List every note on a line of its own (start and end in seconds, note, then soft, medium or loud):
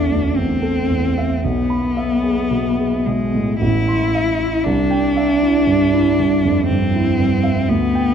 0.00 1.39 A1 soft
0.00 0.37 E2 soft
0.00 0.38 D4 medium
0.00 0.62 A4 soft
0.00 1.18 E5 soft
0.00 1.45 C6 soft
0.11 0.37 D2 soft
0.36 0.79 E2 soft
0.36 1.45 C4 medium
0.62 1.05 A4 soft
0.90 1.33 E2 soft
1.18 1.44 E5 soft
1.44 3.59 B1 soft
1.44 3.07 B3 medium
1.70 2.13 B5 soft
1.97 2.40 E5 soft
2.23 2.66 G#4 soft
2.51 2.95 B2 soft
2.78 3.23 G#4 soft
3.06 3.52 B2 soft
3.06 3.61 G#3 soft
3.35 3.63 A2 soft
3.61 4.63 A1 soft
3.61 4.66 E4 medium
3.88 4.30 C6 soft
4.15 4.56 E5 soft
4.39 4.66 E4 soft
4.64 7.66 C2 soft
4.64 6.68 D4 medium
4.91 5.32 G5 soft
5.17 5.58 E5 soft
5.43 5.84 E4 soft
5.67 6.09 G2 soft
5.94 6.35 E4 soft
6.19 6.60 G2 soft
6.45 6.70 F2 soft
6.68 7.10 G2 soft
6.68 7.71 C4 medium
6.96 7.35 E4 soft
7.20 7.60 G2 soft
7.43 7.69 E5 soft
7.69 8.14 D2 soft
7.69 8.14 B3 medium
7.95 8.14 G5 soft